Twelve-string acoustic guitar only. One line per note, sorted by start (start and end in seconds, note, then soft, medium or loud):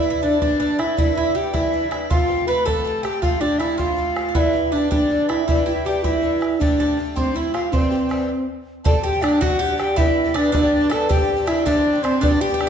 0.02 0.21 G3 soft
0.02 0.22 D4 medium
0.02 0.22 E4 medium
0.21 0.41 E3 medium
0.21 0.41 G3 medium
0.21 0.41 D4 medium
0.21 0.40 E4 medium
0.41 0.61 C3 medium
0.41 0.58 E3 medium
0.41 0.59 G3 medium
0.41 0.60 D4 medium
0.41 0.60 E4 medium
0.59 0.79 E3 medium
0.59 0.79 G3 medium
0.59 0.79 D4 medium
0.59 0.77 E4 medium
0.78 0.97 G3 soft
0.78 0.97 D4 medium
0.78 0.97 E4 medium
0.97 1.16 C3 medium
0.97 1.16 E3 medium
0.97 1.17 G3 medium
0.97 1.16 D4 medium
0.97 1.14 E4 medium
1.15 1.34 G3 soft
1.15 1.36 D4 soft
1.15 1.35 E4 medium
1.34 1.53 E3 medium
1.34 1.53 G3 medium
1.34 1.53 D4 medium
1.34 1.52 E4 medium
1.53 1.73 C3 medium
1.53 1.71 E3 medium
1.53 1.72 G3 medium
1.53 1.73 D4 medium
1.53 1.72 E4 medium
1.72 1.91 E3 medium
1.72 1.92 G3 medium
1.72 1.91 D4 medium
1.72 1.90 E4 medium
1.91 2.10 G3 soft
1.91 2.11 D4 medium
1.91 2.10 E4 medium
2.10 2.29 F3 medium
2.10 2.29 A3 medium
2.10 2.28 C4 medium
2.10 2.27 G4 medium
2.28 2.47 A3 soft
2.28 2.48 C4 medium
2.28 2.47 G4 medium
2.47 2.66 F3 medium
2.47 2.66 A3 medium
2.47 2.65 C4 medium
2.47 2.64 G4 medium
2.65 2.83 F3 medium
2.65 2.84 A3 medium
2.65 2.85 C4 medium
2.65 2.85 G4 medium
2.84 3.04 F3 medium
2.84 3.04 A3 medium
2.84 3.04 C4 medium
2.84 3.02 G4 medium
3.04 3.22 A3 soft
3.04 3.23 C4 soft
3.04 3.23 G4 medium
3.23 3.41 F3 medium
3.23 3.42 A3 medium
3.23 3.41 C4 medium
3.23 3.40 G4 medium
3.41 3.59 A3 soft
3.41 3.60 C4 soft
3.41 3.60 G4 medium
3.59 3.78 F3 medium
3.59 3.79 A3 medium
3.59 3.78 C4 medium
3.59 3.77 G4 medium
3.78 3.95 F3 medium
3.78 3.97 A3 medium
3.78 3.97 C4 medium
3.78 3.98 G4 medium
3.96 4.16 F3 medium
3.96 4.17 A3 medium
3.96 4.16 C4 medium
3.96 4.15 G4 medium
4.16 4.35 A3 soft
4.16 4.35 C4 medium
4.16 4.35 G4 soft
4.35 4.54 C3 medium
4.35 4.54 E3 medium
4.35 4.54 G3 medium
4.35 4.53 D4 medium
4.35 4.52 G4 medium
4.53 4.72 G3 soft
4.53 4.73 D4 medium
4.53 4.72 G4 medium
4.72 4.91 E3 medium
4.72 4.91 G3 medium
4.72 4.90 D4 medium
4.72 4.90 G4 medium
4.91 5.11 C3 medium
4.91 5.09 E3 medium
4.91 5.10 G3 medium
4.91 5.10 D4 medium
4.91 5.10 G4 medium
5.10 5.29 E3 medium
5.10 5.30 G3 medium
5.10 5.29 D4 medium
5.10 5.28 G4 medium
5.29 5.48 G3 soft
5.29 5.48 D4 soft
5.29 5.48 G4 medium
5.48 5.67 C3 medium
5.48 5.67 E3 medium
5.48 5.67 G3 medium
5.48 5.67 D4 medium
5.48 5.65 G4 medium
5.66 5.85 G3 soft
5.66 5.86 D4 soft
5.66 5.85 G4 medium
5.85 6.04 E3 medium
5.85 6.04 G3 medium
5.85 6.03 D4 medium
5.85 6.02 G4 medium
6.04 6.24 C3 medium
6.04 6.21 E3 medium
6.04 6.22 G3 medium
6.04 6.23 D4 medium
6.04 6.23 G4 medium
6.22 6.41 E3 medium
6.22 6.42 G3 medium
6.22 6.41 D4 medium
6.22 6.40 G4 medium
6.41 6.60 G3 soft
6.41 6.61 D4 soft
6.41 6.60 G4 medium
6.60 6.79 F3 medium
6.60 6.79 A3 medium
6.60 6.79 C4 medium
6.60 6.78 G4 medium
6.79 6.98 A3 soft
6.79 6.98 C4 medium
6.79 6.98 G4 medium
6.97 7.16 F3 medium
6.97 7.16 A3 medium
6.97 7.15 C4 medium
6.97 7.14 G4 medium
7.16 7.33 F3 medium
7.16 7.34 A3 medium
7.16 7.35 C4 medium
7.16 7.35 G4 medium
7.34 7.54 F3 medium
7.34 7.54 A3 medium
7.34 7.54 C4 medium
7.34 7.53 G4 medium
7.54 7.73 A3 soft
7.54 7.72 C4 soft
7.54 7.73 G4 soft
7.72 7.91 C3 medium
7.72 7.91 E3 medium
7.72 7.92 G3 medium
7.72 7.91 C4 medium
7.72 7.89 G4 medium
7.90 8.09 G3 soft
7.90 8.10 C4 medium
7.90 8.10 G4 medium
8.09 8.28 E3 medium
8.09 8.29 G3 medium
8.09 8.29 C4 medium
8.09 8.30 G4 medium
8.84 8.94 C3 medium
8.84 8.94 G3 medium
8.84 8.95 C4 medium
8.84 8.94 D4 medium
8.84 8.92 G4 loud
8.93 9.14 C4 soft
8.93 9.13 D4 medium
8.93 9.11 G4 medium
9.13 9.21 C4 soft
9.13 9.22 D4 medium
9.13 9.22 G4 medium
9.21 9.40 G3 medium
9.21 9.41 C4 medium
9.21 9.41 D4 medium
9.21 9.41 G4 medium
9.41 9.50 C3 medium
9.41 9.51 G3 medium
9.41 9.51 C4 medium
9.41 9.50 D4 medium
9.41 9.48 G4 medium
9.49 9.70 C4 soft
9.49 9.69 D4 medium
9.49 9.67 G4 medium
9.68 9.77 C4 soft
9.68 9.78 D4 medium
9.68 9.78 G4 medium
9.77 9.96 G3 medium
9.77 9.97 C4 medium
9.77 9.97 D4 medium
9.77 9.97 G4 medium
9.96 10.06 G2 medium
9.96 10.07 D3 medium
9.96 10.07 G3 medium
9.96 10.06 B3 medium
9.96 10.05 D4 medium
9.96 10.04 G4 medium
10.06 10.26 G3 soft
10.06 10.25 B3 soft
10.06 10.24 D4 medium
10.06 10.23 G4 medium
10.24 10.32 G3 soft
10.24 10.34 B3 medium
10.24 10.35 D4 medium
10.24 10.34 G4 medium
10.34 10.53 G3 medium
10.34 10.53 B3 medium
10.34 10.54 D4 medium
10.34 10.54 G4 medium
10.53 10.63 G2 medium
10.53 10.63 D3 medium
10.53 10.63 G3 medium
10.53 10.63 B3 medium
10.53 10.62 D4 medium
10.53 10.61 G4 medium
10.63 10.83 G3 medium
10.63 10.82 B3 medium
10.63 10.81 D4 medium
10.63 10.80 G4 medium
10.81 10.89 G3 soft
10.81 10.90 B3 medium
10.81 10.91 D4 medium
10.81 10.91 G4 medium
10.90 11.08 G3 medium
10.90 11.10 B3 medium
10.90 11.10 D4 medium
10.90 11.10 G4 medium
11.09 11.19 C3 medium
11.09 11.19 G3 medium
11.09 11.19 C4 medium
11.09 11.19 D4 medium
11.09 11.17 G4 medium
11.18 11.38 C4 soft
11.18 11.37 D4 soft
11.18 11.35 G4 medium
11.37 11.46 C4 soft
11.37 11.47 D4 medium
11.37 11.47 G4 medium
11.46 11.65 G3 medium
11.46 11.66 C4 medium
11.46 11.66 D4 medium
11.46 11.66 G4 medium
11.65 11.75 C3 medium
11.65 11.75 G3 medium
11.65 11.76 C4 medium
11.65 11.75 D4 medium
11.65 11.74 G4 loud
11.75 11.94 C4 medium
11.75 11.94 D4 medium
11.75 11.91 G4 medium
11.93 12.03 C4 medium
11.93 12.04 D4 medium
11.93 12.03 G4 medium
12.03 12.21 G3 medium
12.03 12.22 C4 medium
12.03 12.22 D4 medium
12.03 12.22 G4 medium
12.21 12.31 G2 medium
12.21 12.31 D3 medium
12.21 12.31 G3 medium
12.21 12.31 B3 medium
12.21 12.30 D4 medium
12.21 12.29 G4 medium
12.30 12.51 G3 medium
12.30 12.50 B3 medium
12.30 12.49 D4 medium
12.30 12.48 G4 medium
12.49 12.56 G3 soft
12.49 12.58 B3 soft
12.49 12.59 D4 medium
12.49 12.59 G4 medium
12.58 12.69 G3 medium
12.58 12.69 B3 medium
12.58 12.69 D4 medium
12.58 12.69 G4 medium